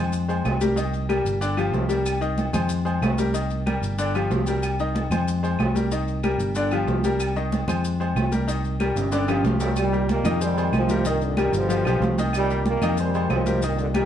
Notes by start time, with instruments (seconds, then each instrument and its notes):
Already playing: fingered electric bass F2, grand piano G#3 G#4 C5
0.13 high conga, maracas
0.28 grand piano G#3 G#4 C5, high conga, low agogo, maracas
0.45 fingered electric bass C2, high conga, low timbale, low agogo, claves, maracas
0.61 grand piano G3 G4 A#4, high conga, maracas
0.76 grand piano D#3 D#4 D#5, high conga, low agogo, maracas
0.94 high conga, maracas
1.09 grand piano G3 G4 A#4, high conga, low timbale, low agogo, claves, maracas
1.25 fingered electric bass G1, maracas
1.41 grand piano D3 D4 D5, high conga, low agogo, maracas
1.57 grand piano F3 F4 G4, high conga, low agogo, claves, maracas
1.72 fingered electric bass C2, high conga, low timbale, maracas
1.89 grand piano G3 G4 A#4, low agogo, maracas
2.06 high conga, low agogo, claves, maracas
2.21 grand piano D#3 D#4 D#5, high conga, maracas
2.38 high conga, low timbale, low agogo, maracas
2.53 fingered electric bass F2, grand piano G#3 G#4 C5, high conga, low conga, low agogo, claves, maracas
2.69 high conga, maracas
2.85 grand piano G#3 G#4 C5, high conga, low agogo, maracas
3.01 fingered electric bass C2, high conga, low timbale, low agogo, claves, maracas
3.18 grand piano G3 G4 A#4, high conga, maracas
3.34 grand piano D#3 D#4 D#5, low agogo, maracas
3.50 high conga, maracas
3.66 grand piano G3 G4 A#4, high conga, low timbale, low agogo, claves, maracas
3.81 fingered electric bass G1, maracas
3.98 grand piano D3 D4 D5, high conga, low agogo, maracas
4.15 grand piano F3 F4 G4, high conga, low agogo, claves, maracas
4.30 fingered electric bass C2, high conga, low timbale, maracas
4.46 grand piano G3 G4 A#4, low agogo, maracas
4.63 high conga, low agogo, claves, maracas
4.79 grand piano D#3 D#4 D#5, high conga, maracas
4.95 high conga, low timbale, low agogo, maracas
5.10 fingered electric bass F2, grand piano G#3 G#4 C5, high conga, low conga, low agogo, claves, maracas
5.28 high conga, maracas
5.43 grand piano G#3 G#4 C5, high conga, low agogo, maracas
5.59 fingered electric bass C2, high conga, low timbale, low agogo, claves, maracas
5.75 grand piano G3 G4 A#4, high conga, maracas
5.91 grand piano D#3 D#4 D#5, high conga, low agogo, maracas
6.08 high conga, maracas
6.23 grand piano G3 G4 A#4, high conga, low timbale, low agogo, claves, maracas
6.38 fingered electric bass G1, maracas
6.55 grand piano D3 D4 D5, high conga, low agogo, maracas
6.71 grand piano F3 F4 G4, high conga, low agogo, claves, maracas
6.87 fingered electric bass C2, high conga, low timbale, maracas
7.04 grand piano G3 G4 A#4, high conga, low agogo, maracas
7.20 high conga, low agogo, claves, maracas
7.36 grand piano D#3 D#4 D#5, high conga, maracas
7.52 high conga, low timbale, low agogo, maracas
7.68 fingered electric bass F2, grand piano G#3 G#4 C5, high conga, low conga, low agogo, claves, maracas
7.84 high conga, maracas
8.00 grand piano G#3 G#4 C5, high conga, low agogo, maracas
8.15 fingered electric bass C2, high conga, low timbale, low agogo, claves, maracas
8.32 grand piano G3 G4 A#4, high conga, maracas
8.48 grand piano D#3 D#4 D#5, low agogo, maracas
8.64 high conga, maracas
8.80 grand piano G3 G4 A#4, high conga, low timbale, low agogo, claves, maracas
8.96 fingered electric bass G1, high timbale, maracas
9.12 grand piano D3 D4 D5, high conga, high timbale, low agogo, maracas
9.28 grand piano F3 F4 G4, high conga, high timbale, low agogo, claves, maracas
9.44 fingered electric bass C2, high conga, low timbale, maracas
9.60 grand piano G3 G4 A#4, low timbale, low agogo, maracas
9.76 trombone section A#2 D#3 G3, high conga, low agogo, claves, maracas
9.92 grand piano G3 G4 A#4, high conga, maracas
10.09 trombone section D#3 G3 A#3, high conga, low timbale, low agogo, maracas
10.24 fingered electric bass F2, grand piano D#3 D#4 D#5, high conga, low conga, low agogo, claves, maracas
10.41 trombone section C3 D#3 G3, grand piano G#3 G#4 C5, high conga, maracas
10.57 grand piano G#3 G#4 C5, high conga, low agogo, maracas
10.72 fingered electric bass C2, trombone section G#2 C3 F3, high conga, low timbale, low agogo, claves, maracas
10.89 grand piano G3 G4 A#4, high conga, maracas
11.05 trombone section G2 A#2 D#3, grand piano D#3 D#4 D#5, high conga, low agogo, maracas
11.21 trombone section D3, high conga, maracas
11.37 trombone section D#3, grand piano G3 G4 A#4, high conga, low timbale, low agogo, claves, maracas
11.53 fingered electric bass G1, trombone section B2 D3 F3, maracas
11.69 grand piano F3 F4 G4, high conga, low agogo, maracas
11.85 fingered electric bass B1, grand piano F3 F4 G4, high conga, low agogo, claves, maracas
12.00 fingered electric bass C2, high conga, low timbale, maracas
12.18 grand piano D#3 D#4 D#5, high conga, low agogo, maracas
12.33 trombone section A#2 D#3 G3, low agogo, claves, maracas
12.50 grand piano G3 G4 A#4, high conga, maracas
12.66 trombone section D#3 G3 A#3, high conga, low timbale, low agogo, maracas
12.82 fingered electric bass F2, grand piano D#3 D#4 D#5, high conga, low conga, low agogo, claves, maracas
12.97 trombone section C3 D#3 G3, grand piano G#3 G#4 C5, maracas
13.14 grand piano G#3 G#4 C5, high conga, low agogo, maracas
13.29 fingered electric bass C2, trombone section G#2 C3 F3, high conga, low timbale, low agogo, claves, maracas
13.46 grand piano G3 G4 A#4, high conga, maracas
13.62 trombone section G2 A#2 D#3, grand piano D#3 D#4 D#5, low agogo, maracas
13.78 trombone section D3, high conga, maracas
13.94 trombone section D#3, grand piano G3 G4 A#4, high conga, low timbale, low agogo, claves, maracas